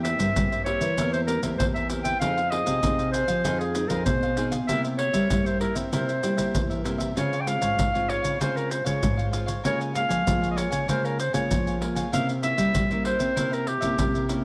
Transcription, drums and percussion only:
0.05 pandeiro medium
0.05 maracas medium
0.19 pandeiro medium
0.19 maracas medium
0.19 surdo soft
0.36 pandeiro medium
0.36 maracas medium
0.36 surdo loud
0.52 pandeiro soft
0.52 maracas soft
0.52 surdo soft
0.66 pandeiro medium
0.81 pandeiro medium
0.81 maracas medium
0.81 surdo soft
0.98 pandeiro medium
0.98 maracas medium
0.98 surdo medium
1.14 pandeiro soft
1.14 maracas soft
1.28 pandeiro medium
1.28 maracas medium
1.43 pandeiro medium
1.43 maracas medium
1.43 surdo soft
1.60 pandeiro medium
1.60 maracas medium
1.60 surdo loud
1.76 pandeiro soft
1.76 maracas soft
1.90 pandeiro medium
1.90 maracas medium
2.05 pandeiro medium
2.05 maracas medium
2.05 surdo soft
2.21 pandeiro medium
2.21 maracas medium
2.21 surdo medium
2.38 pandeiro soft
2.38 maracas soft
2.52 pandeiro medium
2.67 pandeiro medium
2.67 maracas medium
2.67 surdo soft
2.83 pandeiro medium
2.83 maracas medium
2.83 surdo loud
2.99 pandeiro soft
2.99 maracas soft
2.99 surdo soft
3.14 pandeiro medium
3.14 maracas medium
3.28 pandeiro medium
3.28 maracas medium
3.28 surdo soft
3.45 pandeiro medium
3.45 maracas medium
3.45 surdo medium
3.61 pandeiro soft
3.61 maracas soft
3.75 pandeiro medium
3.75 maracas medium
3.90 pandeiro medium
3.90 maracas medium
3.90 surdo soft
4.06 pandeiro medium
4.06 maracas medium
4.06 surdo loud
4.23 pandeiro soft
4.23 maracas soft
4.37 pandeiro medium
4.37 maracas medium
4.52 pandeiro medium
4.52 maracas medium
4.52 surdo soft
4.69 pandeiro medium
4.69 maracas medium
4.69 surdo medium
4.85 pandeiro soft
4.85 maracas soft
4.99 pandeiro medium
5.14 pandeiro medium
5.14 maracas medium
5.14 surdo soft
5.30 pandeiro medium
5.30 maracas medium
5.30 surdo loud
5.46 pandeiro soft
5.46 maracas soft
5.61 pandeiro medium
5.76 pandeiro medium
5.76 maracas medium
5.76 surdo soft
5.93 pandeiro medium
5.93 maracas medium
5.93 surdo medium
6.09 pandeiro soft
6.09 maracas soft
6.23 pandeiro medium
6.23 maracas medium
6.38 pandeiro medium
6.38 maracas medium
6.38 surdo soft
6.55 pandeiro medium
6.55 maracas medium
6.55 surdo loud
6.71 pandeiro soft
6.71 maracas soft
6.86 pandeiro medium
6.86 maracas medium
7.00 pandeiro medium
7.00 maracas medium
7.00 surdo soft
7.17 pandeiro medium
7.17 maracas medium
7.17 surdo medium
7.33 pandeiro soft
7.33 maracas soft
7.47 pandeiro medium
7.47 maracas medium
7.62 pandeiro medium
7.62 maracas medium
7.62 surdo soft
7.79 pandeiro medium
7.79 maracas medium
7.79 surdo loud
7.95 pandeiro soft
7.95 maracas soft
7.95 surdo soft
8.10 pandeiro medium
8.24 pandeiro medium
8.24 maracas medium
8.24 surdo soft
8.41 pandeiro medium
8.41 maracas medium
8.41 surdo medium
8.57 pandeiro soft
8.57 maracas soft
8.71 pandeiro medium
8.71 maracas medium
8.86 pandeiro medium
8.86 maracas medium
8.86 surdo soft
9.03 pandeiro medium
9.03 maracas medium
9.03 surdo loud
9.19 pandeiro soft
9.19 maracas soft
9.33 pandeiro medium
9.33 maracas medium
9.48 pandeiro medium
9.48 maracas medium
9.48 surdo soft
9.65 pandeiro medium
9.65 maracas medium
9.65 surdo medium
9.81 pandeiro soft
9.81 maracas soft
9.95 pandeiro medium
9.95 maracas medium
10.11 pandeiro medium
10.11 maracas medium
10.11 surdo soft
10.27 pandeiro medium
10.27 maracas medium
10.27 surdo loud
10.44 pandeiro soft
10.44 maracas soft
10.44 surdo soft
10.58 pandeiro medium
10.58 maracas medium
10.72 pandeiro medium
10.72 maracas medium
10.72 surdo soft
10.89 pandeiro medium
10.89 maracas medium
10.89 surdo medium
11.05 pandeiro soft
11.05 maracas soft
11.20 pandeiro medium
11.20 maracas medium
11.34 pandeiro medium
11.34 maracas medium
11.34 surdo soft
11.51 pandeiro medium
11.51 maracas medium
11.51 surdo loud
11.67 pandeiro soft
11.67 maracas soft
11.82 pandeiro medium
11.96 pandeiro medium
11.96 maracas medium
11.96 surdo soft
12.13 pandeiro medium
12.13 maracas medium
12.13 surdo medium
12.29 pandeiro soft
12.29 maracas soft
12.43 pandeiro medium
12.43 maracas medium
12.58 pandeiro medium
12.58 maracas medium
12.58 surdo soft
12.75 pandeiro medium
12.75 maracas medium
12.75 surdo loud
12.91 pandeiro soft
12.91 maracas soft
12.91 surdo soft
13.05 pandeiro medium
13.20 pandeiro medium
13.20 maracas medium
13.20 surdo soft
13.37 pandeiro medium
13.37 maracas medium
13.37 surdo medium
13.53 pandeiro soft
13.53 maracas soft
13.67 pandeiro medium
13.82 pandeiro medium
13.82 maracas medium
13.82 surdo soft
13.98 pandeiro medium
13.98 maracas medium
13.98 surdo loud
14.15 pandeiro soft
14.15 maracas soft
14.29 pandeiro medium
14.29 maracas medium

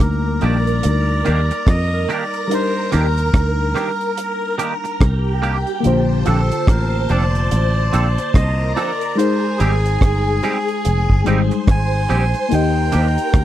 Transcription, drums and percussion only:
0.00 closed hi-hat medium
0.41 closed hi-hat medium
0.67 closed hi-hat medium
0.83 closed hi-hat loud
1.25 closed hi-hat medium
1.51 closed hi-hat medium
1.67 kick loud
1.67 cross-stick loud
1.67 closed hi-hat medium
2.10 closed hi-hat medium
2.34 closed hi-hat medium
2.51 closed hi-hat medium
2.92 cross-stick medium
2.92 closed hi-hat medium
3.18 closed hi-hat medium
3.34 kick loud
3.34 cross-stick loud
3.34 closed hi-hat medium
3.76 cross-stick medium
3.76 closed hi-hat medium
4.01 closed hi-hat soft
4.17 closed hi-hat loud
4.59 closed hi-hat medium
4.85 closed hi-hat medium
5.01 kick loud
5.01 cross-stick loud
5.01 closed hi-hat medium
5.43 closed hi-hat medium
5.67 closed hi-hat medium
5.84 closed hi-hat medium
6.26 closed hi-hat medium
6.51 closed hi-hat medium
6.67 kick loud
6.67 cross-stick loud
6.67 closed hi-hat medium
7.09 closed hi-hat medium
7.35 closed hi-hat medium
7.51 closed hi-hat loud
7.93 closed hi-hat medium
8.18 closed hi-hat medium
8.34 kick loud
8.34 cross-stick loud
8.34 closed hi-hat medium
8.77 closed hi-hat medium
9.01 closed hi-hat medium
9.19 closed hi-hat medium
9.60 closed hi-hat medium
9.85 closed hi-hat medium
10.01 kick loud
10.01 cross-stick loud
10.01 closed hi-hat medium
10.43 closed hi-hat medium
10.68 closed hi-hat medium
10.85 closed hi-hat loud
11.10 kick medium
11.26 closed hi-hat medium
11.51 closed hi-hat soft
11.67 kick loud
11.67 cross-stick loud
11.67 closed hi-hat medium
12.10 closed hi-hat medium
12.34 closed hi-hat medium
12.51 closed hi-hat medium
12.92 closed hi-hat medium
13.18 closed hi-hat medium
13.34 kick loud
13.34 cross-stick loud
13.34 closed hi-hat medium

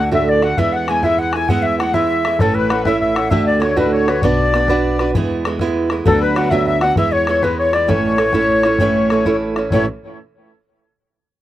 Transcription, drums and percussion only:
0.12 bodhran medium
0.42 bodhran medium
0.57 bodhran medium
0.72 bodhran soft
0.88 bodhran medium
1.03 bodhran medium
1.18 bodhran soft
1.33 bodhran medium
1.49 bodhran medium
1.64 bodhran soft
1.80 bodhran medium
1.94 bodhran medium
2.25 bodhran medium
2.39 bodhran medium
2.55 bodhran soft
2.70 bodhran medium
2.85 bodhran medium
3.01 bodhran soft
3.16 bodhran medium
3.31 bodhran medium
3.47 bodhran soft
3.62 bodhran medium
3.77 bodhran medium
4.08 bodhran medium
4.22 bodhran medium
4.37 bodhran soft
4.54 bodhran medium
4.68 bodhran medium
4.84 bodhran soft
4.99 bodhran medium
5.15 bodhran medium
5.30 bodhran soft
5.45 bodhran medium
5.59 bodhran medium
5.90 bodhran medium
6.06 bodhran medium
6.36 bodhran medium
6.51 bodhran medium
6.67 bodhran soft
6.81 bodhran medium
6.96 bodhran medium
7.12 bodhran soft
7.27 bodhran medium
7.43 bodhran medium
7.73 bodhran medium
7.89 bodhran medium
8.05 bodhran soft
8.18 bodhran medium
8.33 bodhran medium
8.49 bodhran soft
8.63 bodhran medium
8.79 bodhran medium
8.95 bodhran soft
9.10 bodhran medium
9.25 bodhran medium
9.56 bodhran medium
9.71 bodhran medium

